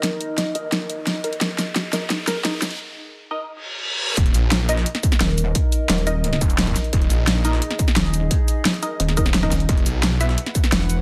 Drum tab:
HH |x-x-x-x-x-x-x-xx|x-x-x-x-x-x-x-xx|----------------|xxx-x-x-xxxxx-x-|
SH |----------------|--x---x---x---x-|----------------|--x---x---xx--x-|
SD |o---o---o---o---|o-o-o-o-o-o-o-o-|----------------|----o--o-o-ooo--|
BD |----------------|----------------|----------------|o---------o-----|

HH |x-x-xxx-xxxxxxxx|xxx-x-x-xxxxx-x-|x-x-xxx-xxxxxxxx|xxx-x-x-xxxxx-x-|
SH |--x---x---xx--x-|--x---x---xx--x-|--x---x---xx--x-|--x---x---xx--x-|
SD |----o----o--o-o-|----o--o-o-ooo--|----o----o-oooo-|----o--o-o-ooo--|
BD |o---------o--o--|o---------o-----|o---------o--o--|o---------o-----|